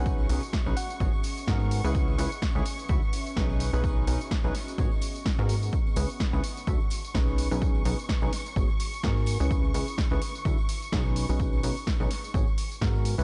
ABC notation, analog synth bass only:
X:1
M:4/4
L:1/16
Q:"Swing 16ths" 1/4=127
K:C#dor
V:1 name="Analog synth bass" clef=bass
B,,,2 B,,, z2 B,,, z2 G,,, z3 G,,3 C,,- | C,,2 C,, z2 C,, z2 =D,, z3 B,,,3 B,,,- | B,,,2 B,,, z2 B,,, z2 G,,, z4 G,,3 | z2 C,, z2 C,, z2 =D,, z3 B,,,3 B,,,- |
B,,,2 B,,, z2 B,,, z2 G,,, z3 G,,3 C,,- | C,,2 C,, z2 C,, z2 =D,, z3 B,,,3 B,,,- | B,,,2 B,,, z2 B,,, z2 G,,, z3 G,,3 C,, |]